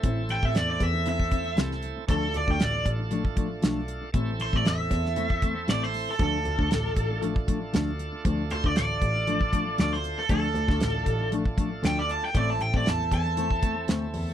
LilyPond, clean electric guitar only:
\new Staff \with { instrumentName = "Clean electric guitar" } { \time 4/4 \key d \dorian \tempo 4 = 117 <e c' e'>16 r8 <c' e'>16 r4 <e c' e'>16 r16 <e c' e'>16 r16 <e c' e'>16 r8. | <f a d'>16 r8 <a d'>16 r4 <f a d'>16 r16 <f a d'>16 r16 <f a d'>16 r8. | <e a c'>16 r8 <a c'>16 r4 <e a c'>16 r16 <e a c'>16 r16 <e a c'>16 r8. | <f a d'>16 r8 <a d'>16 r4 <f a d'>16 r16 <f a d'>16 r16 <f a d'>16 r8. |
<f a d'>16 r8 <a d'>16 r4 <f a d'>16 r16 <f a d'>16 r16 <f a d'>16 r8. | <f a d'>16 r8 <a d'>16 r4 <f a d'>16 r16 <f a d'>16 r16 <f a d'>16 r8. | <e a c'>16 r8 <a c'>16 r4 <e a c'>16 r16 <e a c'>16 r16 <e a c'>16 r8. | }